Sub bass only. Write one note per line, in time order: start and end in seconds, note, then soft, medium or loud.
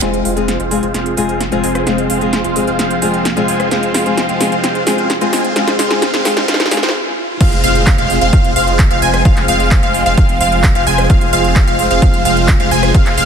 0.02 0.23 F1 medium
0.25 0.58 F1 loud
0.60 0.81 F1 loud
0.83 0.92 F1 medium
0.94 1.15 F1 medium
1.18 1.50 F1 medium
1.52 1.61 F1 medium
1.64 1.84 F1 medium
1.87 2.08 F1 medium
2.10 2.42 F1 loud
2.44 2.65 F1 loud
2.68 2.77 F1 medium
2.79 3.00 F1 medium
3.02 3.34 F1 loud
3.37 3.46 F1 medium
3.48 3.69 F1 loud
3.71 3.92 F1 medium
3.94 4.27 F1 loud
4.29 4.50 F1 loud
4.52 4.61 F1 medium
4.64 4.84 F1 medium
4.87 5.19 F1 medium
5.21 5.31 F1 loud
5.33 5.54 F1 loud
5.56 5.77 F1 medium
5.79 6.11 F1 loud
6.14 6.34 F1 loud
6.37 6.46 F1 medium
6.48 6.81 F1 loud
6.83 6.92 F1 medium
7.41 7.61 F1 medium
7.64 7.96 F1 loud
7.98 8.19 F1 loud
8.21 8.31 F1 medium
8.33 8.54 F1 loud
8.56 8.88 F1 loud
8.91 9.00 F1 loud
9.02 9.23 F1 loud
9.25 9.46 F1 medium
9.48 9.81 F1 loud
9.83 10.04 F1 loud
10.06 10.15 F1 loud
10.18 10.38 F1 loud
10.41 10.73 F1 loud
10.75 10.84 F1 loud
10.87 11.08 F1 loud
11.10 11.31 F1 loud
11.33 11.65 F1 loud
11.68 11.88 F1 loud
11.91 12.00 F1 medium
12.02 12.23 F1 loud
12.25 12.58 F1 loud
12.60 12.69 F1 loud
12.71 12.92 F1 loud
12.95 13.15 F1 medium
13.18 13.25 F1 loud